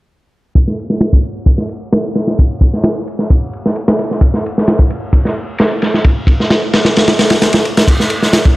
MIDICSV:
0, 0, Header, 1, 2, 480
1, 0, Start_track
1, 0, Tempo, 458015
1, 577, Time_signature, 4, 2, 24, 8
1, 8977, End_track
2, 0, Start_track
2, 0, Title_t, "Drums"
2, 578, Note_on_c, 9, 51, 81
2, 580, Note_on_c, 9, 36, 98
2, 682, Note_off_c, 9, 51, 0
2, 685, Note_off_c, 9, 36, 0
2, 708, Note_on_c, 9, 38, 44
2, 813, Note_off_c, 9, 38, 0
2, 828, Note_on_c, 9, 51, 63
2, 933, Note_off_c, 9, 51, 0
2, 942, Note_on_c, 9, 38, 52
2, 1046, Note_off_c, 9, 38, 0
2, 1050, Note_on_c, 9, 51, 80
2, 1054, Note_on_c, 9, 38, 97
2, 1155, Note_off_c, 9, 51, 0
2, 1159, Note_off_c, 9, 38, 0
2, 1182, Note_on_c, 9, 36, 85
2, 1287, Note_off_c, 9, 36, 0
2, 1296, Note_on_c, 9, 51, 59
2, 1401, Note_off_c, 9, 51, 0
2, 1531, Note_on_c, 9, 36, 92
2, 1538, Note_on_c, 9, 51, 85
2, 1636, Note_off_c, 9, 36, 0
2, 1643, Note_off_c, 9, 51, 0
2, 1655, Note_on_c, 9, 38, 46
2, 1759, Note_off_c, 9, 38, 0
2, 1769, Note_on_c, 9, 51, 59
2, 1874, Note_off_c, 9, 51, 0
2, 2017, Note_on_c, 9, 38, 99
2, 2019, Note_on_c, 9, 51, 71
2, 2121, Note_off_c, 9, 38, 0
2, 2123, Note_off_c, 9, 51, 0
2, 2252, Note_on_c, 9, 51, 58
2, 2258, Note_on_c, 9, 38, 48
2, 2357, Note_off_c, 9, 51, 0
2, 2363, Note_off_c, 9, 38, 0
2, 2383, Note_on_c, 9, 38, 48
2, 2488, Note_off_c, 9, 38, 0
2, 2498, Note_on_c, 9, 51, 81
2, 2504, Note_on_c, 9, 36, 101
2, 2603, Note_off_c, 9, 51, 0
2, 2608, Note_off_c, 9, 36, 0
2, 2733, Note_on_c, 9, 51, 62
2, 2735, Note_on_c, 9, 36, 92
2, 2838, Note_off_c, 9, 51, 0
2, 2839, Note_off_c, 9, 36, 0
2, 2867, Note_on_c, 9, 38, 42
2, 2972, Note_off_c, 9, 38, 0
2, 2972, Note_on_c, 9, 38, 103
2, 2974, Note_on_c, 9, 51, 83
2, 3077, Note_off_c, 9, 38, 0
2, 3079, Note_off_c, 9, 51, 0
2, 3221, Note_on_c, 9, 51, 62
2, 3326, Note_off_c, 9, 51, 0
2, 3341, Note_on_c, 9, 38, 40
2, 3446, Note_off_c, 9, 38, 0
2, 3458, Note_on_c, 9, 51, 77
2, 3462, Note_on_c, 9, 36, 107
2, 3563, Note_off_c, 9, 51, 0
2, 3567, Note_off_c, 9, 36, 0
2, 3702, Note_on_c, 9, 51, 58
2, 3807, Note_off_c, 9, 51, 0
2, 3832, Note_on_c, 9, 38, 55
2, 3936, Note_off_c, 9, 38, 0
2, 3938, Note_on_c, 9, 51, 72
2, 4043, Note_off_c, 9, 51, 0
2, 4065, Note_on_c, 9, 38, 112
2, 4170, Note_off_c, 9, 38, 0
2, 4179, Note_on_c, 9, 51, 65
2, 4181, Note_on_c, 9, 38, 39
2, 4284, Note_off_c, 9, 51, 0
2, 4286, Note_off_c, 9, 38, 0
2, 4309, Note_on_c, 9, 38, 40
2, 4413, Note_off_c, 9, 38, 0
2, 4414, Note_on_c, 9, 36, 106
2, 4423, Note_on_c, 9, 51, 85
2, 4519, Note_off_c, 9, 36, 0
2, 4528, Note_off_c, 9, 51, 0
2, 4546, Note_on_c, 9, 38, 50
2, 4651, Note_off_c, 9, 38, 0
2, 4675, Note_on_c, 9, 51, 67
2, 4780, Note_off_c, 9, 51, 0
2, 4798, Note_on_c, 9, 38, 53
2, 4897, Note_on_c, 9, 51, 83
2, 4903, Note_off_c, 9, 38, 0
2, 4903, Note_on_c, 9, 38, 96
2, 5002, Note_off_c, 9, 51, 0
2, 5008, Note_off_c, 9, 38, 0
2, 5020, Note_on_c, 9, 36, 97
2, 5124, Note_off_c, 9, 36, 0
2, 5139, Note_on_c, 9, 51, 59
2, 5244, Note_off_c, 9, 51, 0
2, 5375, Note_on_c, 9, 36, 99
2, 5377, Note_on_c, 9, 51, 79
2, 5480, Note_off_c, 9, 36, 0
2, 5482, Note_off_c, 9, 51, 0
2, 5504, Note_on_c, 9, 38, 50
2, 5609, Note_off_c, 9, 38, 0
2, 5852, Note_on_c, 9, 51, 75
2, 5867, Note_on_c, 9, 38, 107
2, 5956, Note_off_c, 9, 51, 0
2, 5972, Note_off_c, 9, 38, 0
2, 6098, Note_on_c, 9, 51, 62
2, 6106, Note_on_c, 9, 38, 53
2, 6202, Note_off_c, 9, 51, 0
2, 6211, Note_off_c, 9, 38, 0
2, 6228, Note_on_c, 9, 38, 55
2, 6333, Note_off_c, 9, 38, 0
2, 6334, Note_on_c, 9, 51, 79
2, 6338, Note_on_c, 9, 36, 95
2, 6438, Note_off_c, 9, 51, 0
2, 6443, Note_off_c, 9, 36, 0
2, 6570, Note_on_c, 9, 36, 83
2, 6577, Note_on_c, 9, 51, 66
2, 6675, Note_off_c, 9, 36, 0
2, 6682, Note_off_c, 9, 51, 0
2, 6709, Note_on_c, 9, 38, 47
2, 6814, Note_off_c, 9, 38, 0
2, 6817, Note_on_c, 9, 38, 119
2, 6818, Note_on_c, 9, 51, 77
2, 6922, Note_off_c, 9, 38, 0
2, 6923, Note_off_c, 9, 51, 0
2, 7058, Note_on_c, 9, 51, 81
2, 7060, Note_on_c, 9, 38, 104
2, 7162, Note_off_c, 9, 51, 0
2, 7165, Note_off_c, 9, 38, 0
2, 7177, Note_on_c, 9, 38, 106
2, 7189, Note_on_c, 9, 51, 76
2, 7282, Note_off_c, 9, 38, 0
2, 7294, Note_off_c, 9, 51, 0
2, 7299, Note_on_c, 9, 51, 81
2, 7307, Note_on_c, 9, 38, 95
2, 7404, Note_off_c, 9, 51, 0
2, 7412, Note_off_c, 9, 38, 0
2, 7416, Note_on_c, 9, 51, 70
2, 7419, Note_on_c, 9, 38, 94
2, 7520, Note_off_c, 9, 51, 0
2, 7523, Note_off_c, 9, 38, 0
2, 7535, Note_on_c, 9, 51, 70
2, 7536, Note_on_c, 9, 38, 91
2, 7639, Note_off_c, 9, 51, 0
2, 7641, Note_off_c, 9, 38, 0
2, 7650, Note_on_c, 9, 51, 82
2, 7658, Note_on_c, 9, 38, 91
2, 7755, Note_off_c, 9, 51, 0
2, 7762, Note_off_c, 9, 38, 0
2, 7773, Note_on_c, 9, 38, 91
2, 7774, Note_on_c, 9, 51, 78
2, 7878, Note_off_c, 9, 38, 0
2, 7879, Note_off_c, 9, 51, 0
2, 7888, Note_on_c, 9, 51, 82
2, 7903, Note_on_c, 9, 38, 94
2, 7992, Note_off_c, 9, 51, 0
2, 8007, Note_off_c, 9, 38, 0
2, 8019, Note_on_c, 9, 51, 53
2, 8124, Note_off_c, 9, 51, 0
2, 8145, Note_on_c, 9, 51, 77
2, 8148, Note_on_c, 9, 38, 92
2, 8249, Note_off_c, 9, 51, 0
2, 8253, Note_off_c, 9, 38, 0
2, 8255, Note_on_c, 9, 36, 101
2, 8258, Note_on_c, 9, 49, 83
2, 8260, Note_on_c, 9, 51, 79
2, 8359, Note_off_c, 9, 36, 0
2, 8363, Note_off_c, 9, 49, 0
2, 8365, Note_off_c, 9, 51, 0
2, 8383, Note_on_c, 9, 38, 53
2, 8488, Note_off_c, 9, 38, 0
2, 8488, Note_on_c, 9, 51, 59
2, 8593, Note_off_c, 9, 51, 0
2, 8620, Note_on_c, 9, 38, 52
2, 8725, Note_off_c, 9, 38, 0
2, 8730, Note_on_c, 9, 38, 114
2, 8732, Note_on_c, 9, 51, 85
2, 8835, Note_off_c, 9, 38, 0
2, 8837, Note_off_c, 9, 51, 0
2, 8860, Note_on_c, 9, 36, 95
2, 8965, Note_off_c, 9, 36, 0
2, 8977, End_track
0, 0, End_of_file